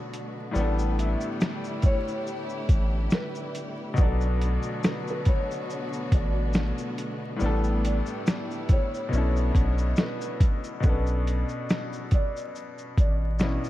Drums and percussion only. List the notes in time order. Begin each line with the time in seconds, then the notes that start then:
0.14 closed hi-hat, shaker
0.55 shaker
0.79 shaker
0.99 closed hi-hat, shaker
1.21 shaker
1.41 snare, shaker
1.64 shaker
1.82 kick, closed hi-hat, shaker
2.08 shaker
2.27 shaker
2.49 shaker
2.69 kick, closed hi-hat, shaker
3.10 snare, shaker
3.35 shaker
3.55 closed hi-hat, shaker
3.96 kick, shaker
4.21 shaker
4.42 closed hi-hat, shaker
4.63 shaker
4.83 snare, shaker
5.07 shaker
5.25 kick, closed hi-hat, shaker
5.51 shaker
5.70 shaker
5.93 shaker
6.12 kick, closed hi-hat, shaker
6.53 snare, shaker
6.78 shaker
6.98 closed hi-hat, shaker
7.40 shaker
7.64 shaker
7.85 closed hi-hat, shaker
8.06 shaker
8.27 snare, shaker
8.51 shaker
8.69 kick, closed hi-hat, shaker
8.94 shaker
9.13 shaker
9.36 shaker
9.55 kick, closed hi-hat, shaker
9.78 shaker
9.96 snare, shaker
10.21 shaker
10.40 kick, closed hi-hat, shaker
10.64 shaker
10.83 kick, shaker
11.07 shaker
11.27 closed hi-hat, shaker
11.49 shaker
11.69 snare, shaker
11.93 shaker
12.11 kick, closed hi-hat, shaker
12.36 shaker
12.55 shaker
12.78 shaker
12.98 kick, closed hi-hat, shaker
13.39 snare, shaker
13.64 shaker